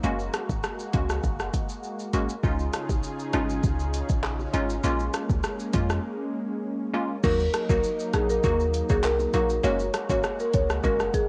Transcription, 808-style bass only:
0.04 0.29 F#1 loud
0.49 0.61 G#1 medium
0.94 1.19 C#2 medium
1.24 1.49 F#1 loud
2.14 2.27 G#1 loud
2.44 2.69 C#2 loud
2.89 3.01 A#1 loud
3.34 3.59 G#1 medium
3.64 4.02 C#2 loud
4.10 4.47 A#1 medium
4.54 4.79 G#1 medium
4.84 5.09 A#1 loud
5.29 5.41 C#2 medium
5.74 5.99 F2 medium
7.24 7.49 D#2 loud
7.69 7.81 C2 loud
8.14 8.39 A#1 medium
8.44 8.82 D#2 loud
8.90 9.27 C2 medium
9.34 9.59 A#1 medium
9.64 9.89 F#1 loud
10.09 10.21 G#1 medium
10.54 10.79 C#2 medium
10.84 11.09 F#1 loud

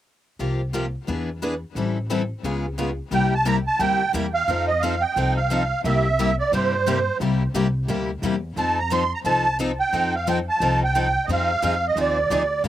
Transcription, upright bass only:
0.39 0.94 C2 medium
1.08 1.63 E2 medium
1.75 2.30 A1 medium
2.43 2.98 C#2 medium
3.11 3.66 C2 medium
3.79 4.09 D2 medium
4.14 4.43 E2 medium
4.48 5.03 F2 medium
5.16 5.71 C2 medium
5.84 6.39 C2 medium
6.52 7.07 G2 medium
7.20 7.48 C2 medium
7.54 7.84 C2 medium
7.88 8.18 D2 medium
8.22 8.52 E2 medium
8.56 9.11 F2 medium
9.24 9.79 C2 medium
9.93 10.47 F2 medium
10.60 11.15 C2 medium
11.28 11.56 F2 medium
11.63 11.92 F2 medium
11.96 12.25 D#2 medium
12.30 12.59 D2 medium
12.64 12.68 C2 medium

